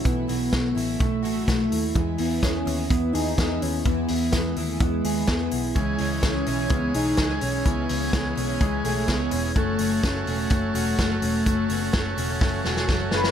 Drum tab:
HH |x-o-x-o-x-o-x-o-|x-o-x-o-x-o-x-o-|x-o-x-o-x-o-x-o-|x-o-x-o-x-o-x-o-|
SD |----o-------o---|----o-------o---|----o-------o---|----o-------o---|
BD |o---o---o---o---|o---o---o---o---|o---o---o---o---|o---o---o---o---|

HH |x-o-x-o-x-o-x-o-|x-o-x-o-x-o-x-o-|x-o-x-o---------|
SD |----o-------o---|----o-------o---|----o---o-ooo-oo|
BD |o---o---o---o---|o---o---o---o---|o---o---o---o---|